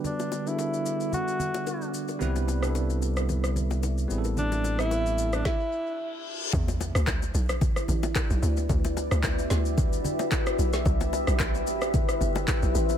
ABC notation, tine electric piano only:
X:1
M:4/4
L:1/16
Q:"Swing 16ths" 1/4=111
K:G
V:1 name="Tine electric piano"
[D,G,B,DFB]2 z [D,G,B,DF^GA]6 z6 z | [G,B,CEB]2 z [G,B,CDEA]6 z4 z [G,B,CE^GA]2- | [G,B,CE^GA]2 z [=G,B,CEA]4- [G,B,CEA] z8 | z16 |
z16 | z16 |]